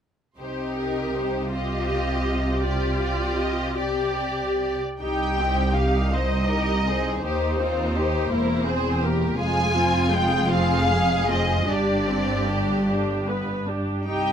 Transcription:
0.38 double bass section C2, cello section C3, viola section D#4, violin section G4 C5
0.80 violin section A#4
1.18 violin section C5
1.50 violin section F4, viola section G4
1.55 violin section D#5
2.58 viola section F4, violin section G4 D5
3.00 violin section D5
3.39 violin section D#5
3.75 violin section G4, viola section G4
3.79 violin section D5
5.01 double bass section C2, cello section C2, viola section D#4 G4, violin section G4 G5
5.39 viola section C4 D#4
5.74 viola section D#4 G4, violin section F5
6.12 viola section C4 D#4, violin section C5 D#5
6.48 viola section D#4 G4, violin section A#4
6.86 viola section C4 D#4, violin section G#4
7.22 double bass section D#2, cello section D#2, viola section D#4 G4, violin section G4 C5
7.60 viola section C4 D#4, violin section F4
7.97 viola section D#4 G4, violin section G4
8.32 double bass section E1, cello section E2, viola section A#3 A#4, violin section E4
8.65 viola section C4 C5, violin section G#4
9.02 viola section A#3 A#4, violin section G4
9.38 double bass section F1, cello section F2, viola section G#3 G#4, violin section F4 G#5
9.76 viola section C4 F4
10.12 viola section G#3 G#4, violin section G5
10.51 viola section C4 F4, violin section G#4 F5
10.91 viola section G#3 G#4
11.28 viola section C4 F4, violin section D#5
11.67 double bass section G1, cello section G2, viola section D4 G4, violin section G4 D5
12.08 viola section C4 D4
12.47 viola section D4 G4
12.88 viola section D4 G4
13.28 viola section B3 B4
13.68 viola section D4 G4
14.06 cello section C2, double bass section C2, viola section D#4 G4, violin section D#4 G5

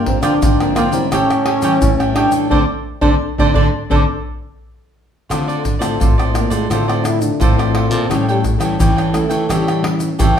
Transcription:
Already playing: nylon-string guitar G2, cavaquinho F4 A#4 D5 G5
0.06 nylon-string guitar F3 A#3 C4, trombone C4, pandeiro, surdo
0.22 nylon-string guitar D3, trombone D4, cavaquinho F4 A#4 D5 G5, pandeiro, tamborim, shaker
0.42 nylon-string guitar G#2 D3, cavaquinho F4 A#4 D5 G5, pandeiro, shaker, surdo
0.60 nylon-string guitar F3 A#3 C4, cavaquinho A#4 D5 G5, pandeiro, tamborim, shaker
0.75 trombone A#3, cavaquinho F4 A#4 D5 G5, pandeiro, tamborim, shaker
0.92 nylon-string guitar G3 C#4 E4, trombone C4, cavaquinho A#4 D5 G5, pandeiro, shaker
1.11 nylon-string guitar A2, trombone C#4, cavaquinho G4 A4 C#5 G5, pandeiro, tamborim, shaker, surdo
1.30 pandeiro, tamborim, shaker
1.46 cavaquinho G4 A4 C#5 G5, pandeiro, tamborim
1.62 nylon-string guitar E3 G3 C#4 E4, cavaquinho G4 A4 C#5 G5, pandeiro, shaker
1.82 nylon-string guitar A2 E3, pandeiro, shaker, surdo
2.00 nylon-string guitar G3 E4, cavaquinho A4 C#5 G5, pandeiro, tamborim, shaker
2.14 trombone D4, cavaquinho G4 A4 C#5 G5, pandeiro, tamborim
2.32 nylon-string guitar A2, cavaquinho A4 C#5 G5, pandeiro, shaker
2.50 nylon-string guitar D3 A3 C4 D4, trombone D4, cavaquinho A4 C5 D5, surdo
3.01 nylon-string guitar D3 A3 C4 D4, trombone D4, cavaquinho A4 C5 D5, surdo
3.38 nylon-string guitar D3 A3 C4 D4, trombone D4, cavaquinho A4 C5 D5, surdo
3.54 nylon-string guitar D3 A3 C4 D4, trombone D4, cavaquinho A4 C5 D5, surdo
3.90 nylon-string guitar D3 A3 C4 D4, trombone D4, cavaquinho A4 C5 D5, surdo
5.29 nylon-string guitar D3 A3 C4 F4, cavaquinho F4 A4 C5 D5, pandeiro, tamborim, shaker, surdo
5.48 cavaquinho A4 C5 D5, pandeiro, shaker
5.64 muted cavaquinho stroke, pandeiro, shaker, surdo
5.79 nylon-string guitar A2 A3 C4 F4, cavaquinho A4 C5 D5, pandeiro, tamborim, shaker
5.99 nylon-string guitar A2, cavaquinho F4 A4 C5 D5, pandeiro, shaker, surdo
6.18 trombone C4, cavaquinho A4 C5 D5, pandeiro, tamborim, shaker
6.33 nylon-string guitar A3 C4 F4, trombone A#3, pandeiro, tamborim, shaker
6.50 nylon-string guitar A2, trombone G#3, cavaquinho A4 C5 D5, pandeiro, shaker
6.70 nylon-string guitar A2 D3 A3 C4 F4, trombone A3, cavaquinho F4 A4 C5 D5, pandeiro, tamborim, shaker, surdo
6.88 trombone C4, cavaquinho A4 C5 D5, pandeiro, tamborim, shaker
7.03 nylon-string guitar A3 C4 F4, muted cavaquinho stroke, pandeiro, tamborim, shaker
7.07 trombone E4
7.22 trombone D4, pandeiro, shaker
7.39 nylon-string guitar A2, trombone C4, cavaquinho F4 A4 C5 D5, pandeiro, shaker, surdo
7.57 trombone E3, nylon-string guitar A3 C4 F4, cavaquinho A4 C5 D5, pandeiro, tamborim, shaker
7.75 trombone A3, cavaquinho F4 A4 C5 D5, pandeiro, tamborim
7.91 nylon-string guitar A#2, trombone C4, cavaquinho A4 C5 D5, pandeiro, shaker
8.09 nylon-string guitar A2 G3 C#4 E4, trombone C#4, cavaquinho G4 A4 C#5 G5, pandeiro, tamborim, shaker, surdo
8.28 trombone G3, cavaquinho A4 C#5 G5, pandeiro, shaker
8.44 muted cavaquinho stroke, pandeiro, shaker, surdo
8.59 nylon-string guitar E3 G3 C#4 E4, cavaquinho A4 C#5 G5, pandeiro, tamborim, shaker
8.79 nylon-string guitar E3, cavaquinho G4 A4 C#5 G5, pandeiro, shaker, surdo
8.97 cavaquinho A4 C#5 G5, pandeiro, tamborim, shaker
9.13 nylon-string guitar G3 C#4 E4, trombone A3, pandeiro, tamborim, shaker
9.29 nylon-string guitar E3, cavaquinho A4 C#5 G5, pandeiro, shaker
9.49 nylon-string guitar A2 E3 G3 C#4 E4, trombone G3, cavaquinho G4 A4 C#5 G5, pandeiro, tamborim, shaker, surdo
9.67 cavaquinho A4 C#5 G5, pandeiro, tamborim, shaker
9.82 nylon-string guitar G3 C#4 E4, muted cavaquinho stroke, pandeiro, tamborim
10.00 pandeiro, shaker
10.19 nylon-string guitar E3, cavaquinho G4 A4 C#5 G5, pandeiro, shaker, surdo

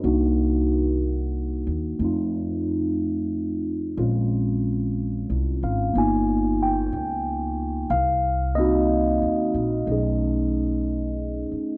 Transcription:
Already playing: tine electric piano A#4
0.04 upright bass C2, tine electric piano A#3 D4 D#4 F#4
1.67 upright bass D#2
1.99 upright bass F2, tine electric piano A3 C4 D#4
2.05 tine electric piano F4
3.97 upright bass A#1, tine electric piano G#3 C4 C#4 F4
5.30 upright bass C2
5.63 upright bass G#1, tine electric piano F5
5.93 upright bass G1, tine electric piano A#3 B3 D#4
5.98 tine electric piano F4 G#5
6.63 tine electric piano G5
6.92 upright bass C#2
7.90 upright bass C2, tine electric piano F5
8.55 tine electric piano A#3 C4 D#4 D#5
8.60 tine electric piano F#4
9.22 upright bass D#2
9.54 upright bass A#1
9.86 upright bass B1, tine electric piano A3 C#4 D#4
9.92 tine electric piano G#4
11.52 muted upright bass stroke

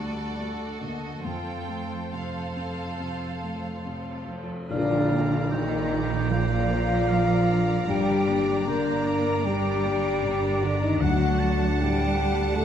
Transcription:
Already playing: cello section D2, harp D3 A3 A#3 F#4 A4 D6, grand piano D4, violin section F#4 A4 D5
0.00 viola section G3, grand piano A3
0.13 harp A4
0.39 grand piano A3, viola section A4, harp F#5
0.68 harp A4
0.81 grand piano D3, viola section A#3, violin section D#5
0.96 harp F#4
1.24 grand piano F2, cello section F2, harp F3, violin section F4 A4 G5, viola section C5
1.53 harp C4
1.68 grand piano A3
1.83 harp A4
2.12 grand piano C3, violin section F4 A4 F5, harp C5
2.56 grand piano C4
2.71 harp F4
2.99 grand piano C3, harp A3
3.28 harp C4
3.43 grand piano A3
3.57 harp A4
3.85 grand piano C3, harp C5
4.13 harp A4
4.28 grand piano C4
4.43 harp F4
4.69 double bass section A#1, harp A#2, grand piano A#2, cello section D3, viola section A#3, french horn section D4, flute D5, violin section D5 A#5, oboe F5, tam-tam
4.91 harp F3
5.11 harp A#3, grand piano A#3
5.51 cello section D#3, grand piano F3, french horn section D#4, harp F4, flute D#5, oboe G5
5.72 harp A#4
5.92 grand piano F4, harp D6
6.12 harp F5
6.31 grand piano F3, cello section F3, french horn section F4, harp D5, flute F5
6.51 harp F5
6.70 grand piano A#3, harp D5
6.89 harp F5
7.08 grand piano F3, harp D5, oboe F5
7.29 harp A#4
7.48 grand piano D4
7.68 harp D4
7.88 double bass section G1, harp G2, grand piano G2, cello section G3, viola section D4, french horn section G4, oboe A#4, flute G5
8.09 harp D3
8.28 harp A#3, grand piano A#3, oboe D5
8.48 harp D4
8.66 grand piano D3, cello section A#3, harp A#4, french horn section A#4, oboe C5, flute A#5
8.87 harp D4
9.06 grand piano D4, harp D5, oboe D5
9.25 harp A#5
9.45 grand piano D3, cello section G3, french horn section G4, harp D5, flute G5
9.64 harp A#5
9.84 grand piano A#3, harp D5
10.03 harp A#5
10.23 grand piano D3, harp D5
10.42 harp A#4
10.61 cello section D3, harp D4, grand piano D4, french horn section D4, flute D5
10.81 cello section D#3, harp A#3, french horn section D#4, flute D#5
11.00 double bass section D2, grand piano D2, harp D3, cello section F#3, french horn section F#4, oboe F#5, violin section F#5 A5, flute F#5
11.20 harp A3
11.39 grand piano F#3, harp D4, oboe A5
11.59 harp A4
11.79 grand piano A2, cello section G3, french horn section G4, flute G5
11.98 harp D5
12.17 grand piano D4, harp A5
12.36 harp F#5
12.55 grand piano A2, cello section A3, french horn section A4, oboe F#5, harp A5, flute A5

